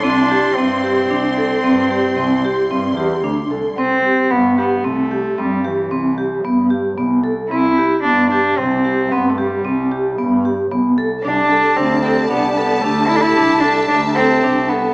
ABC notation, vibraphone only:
X:1
M:7/4
L:1/8
Q:1/4=112
K:C
V:1 name="Vibraphone"
C G C G D A C G C G C G D A | C G B, G C G C G C G B, G B, A | C G B, G C G C G C G B, G B, A | D A D A D A D A D A D A D A |]